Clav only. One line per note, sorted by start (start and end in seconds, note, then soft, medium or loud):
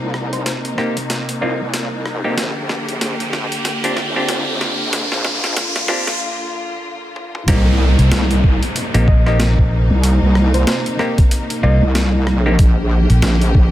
0.00 0.75 A#3 medium
0.00 0.75 C4 medium
0.00 0.75 D#4 medium
0.00 0.75 G4 loud
0.78 0.97 A#3 medium
0.78 0.97 C4 medium
0.78 0.97 D#4 medium
0.78 0.97 G4 medium
1.42 1.61 A#3 medium
1.42 1.61 C4 medium
1.42 1.61 D#4 medium
1.42 1.61 F4 loud
2.24 2.36 A#3 medium
2.24 2.36 C4 medium
2.24 2.36 D#4 medium
2.24 2.36 G4 loud
3.84 3.97 C4 loud
3.84 3.97 D4 medium
3.84 3.97 F4 medium
3.84 3.97 G4 loud
4.16 5.86 C4 loud
4.16 5.86 D4 medium
4.16 5.86 F4 medium
4.16 5.86 G4 loud
5.88 6.07 C4 medium
5.88 6.07 D4 medium
5.88 6.07 F4 medium
5.88 6.07 G4 loud
7.48 8.44 A#3 loud
7.48 8.44 C4 medium
7.48 8.44 D#4 medium
7.48 8.44 G4 loud
8.94 9.08 A#3 loud
8.94 9.07 C4 medium
8.94 9.07 D#4 medium
8.94 9.08 G4 loud
9.26 10.96 A#3 loud
9.26 10.96 C4 medium
9.26 10.96 D#4 medium
9.26 10.96 G4 loud
10.99 11.18 A#3 medium
10.99 11.18 C4 medium
10.99 11.18 D#4 medium
10.99 11.18 G4 medium
11.63 11.82 A#3 medium
11.63 11.82 C4 medium
11.63 11.82 D#4 medium
11.63 11.82 F4 loud
12.46 12.57 A#3 medium
12.46 12.57 C4 medium
12.46 12.57 D#4 medium
12.46 12.57 G4 loud